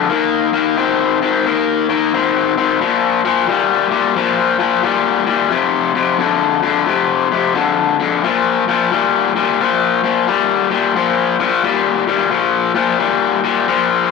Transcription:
overdriven electric guitar
0.10 D#3 A#3
0.53 D#3 A#3
0.77 D#3 C4
1.22 D#3 C4
1.46 D#3 A#3
1.89 D#3 A#3
2.14 D#3 C4
2.57 D#3 C4
2.81 A#2 F3
3.25 A#2 F3
3.48 A#2 G3
3.91 A#2 G3
4.16 A#2 F3
4.59 A#2 F3
4.83 A#2 G3
5.27 A#2 G3
5.50 F2 C3
5.95 F2 C3
6.19 F2 D3
6.63 F2 D3
6.87 F2 C3
7.31 F2 C3
7.55 F2 D3
8.00 F2 D3
8.24 A#2 F3
8.68 A#2 F3
8.91 A#2 G3
9.36 A#2 G3
9.60 A#2 F3
10.04 A#2 F3
10.27 A#2 G3
10.70 A#2 G3
10.96 A#2 F3
11.40 A#2 F3
11.64 A#2 G3
12.07 A#2 G3
12.31 A#2 F3
12.75 A#2 F3
12.99 A#2 G3
13.44 A#2 G3
13.68 A#2 F3

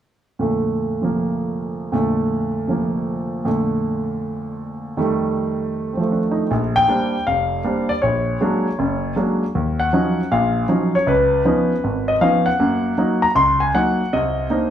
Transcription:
grand piano
0.39 F2 A#2 D3 A3
1.02 C3 F3 A#3
1.92 F2 A#2 D3 A3
2.68 C3 F3 A#3
3.44 F2 A#2 D3 A3
4.97 F2 D#3 G3 A3
5.93 F3 C4
6.00 A3
6.12 D4
6.31 D#4
6.51 A#1
6.76 G5
6.88 G3 A#3 C4 D4
7.27 F1 F5
7.64 G3 A#3 C4 D4
7.89 D5
8.02 A#1 C#5
8.41 F#3 G#3 A#3 D4
8.79 F#1
9.16 F#3 G#3 A#3 D4
9.55 D#2
9.80 F#5
9.93 F3 F#3 C#4 D#4
10.31 A#1 A#2 F5
10.69 F3 F#3 C#4 D#4
10.95 C#5
11.07 C#2 B4
11.45 F3 B3 C#4 D#4
11.84 G#1
12.08 D#5
12.21 F3 B3 C#4 D#4 F5
12.46 F#5
12.60 F#2 A#3
12.98 F#3 A#3 D#4
13.22 A#5
13.35 C#2 C6
13.60 G#5
13.74 F#3 A#3 D#4 F#5
14.13 C2 C3 D#5
14.50 A#3 C4 D4 D#4

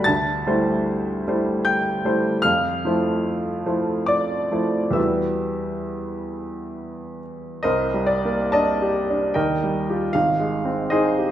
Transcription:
grand piano
Already playing: G3 A3 D5 B6
0.04 D2 A5 A6
0.47 G3 A3 E4 C5
1.27 G3 A3 E4 C5
1.65 G5 G6
2.05 G3 A3 E4 C5
2.42 F2 F5 F6
2.85 F3 A3 E4 C5
3.66 F3 A3 E4 C5
4.06 D5 D6
4.51 F3 A3 E4 C5
4.91 E2 G3 B3 E4 E5 E6
4.95 F#4
7.63 C2 A#4 C5 D#5
7.94 G3
8.06 D5
8.25 A#3
8.52 D4 D5 D#5 A5
8.82 G4
9.10 D4
9.34 D#2 A#4 D#5 G5
9.64 G3
9.89 F4 G4
10.13 G#1 F5
10.40 G#3
10.65 C4
10.90 D#4 G#4 C5 D#5
11.18 G4

